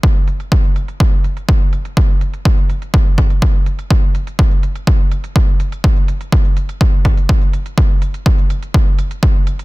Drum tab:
HH |--xx-xxx--xx--xx|--xx-xxx--xx--xx|--xx-xxx--xx--xx|-xxx-xxx--xx-xxx|
BD |o---o---o---o---|o---o---o-o-o---|o---o---o---o---|o---o---o-o-o---|

HH |x-xx-xxx--xx--xx|
BD |o---o---o---o---|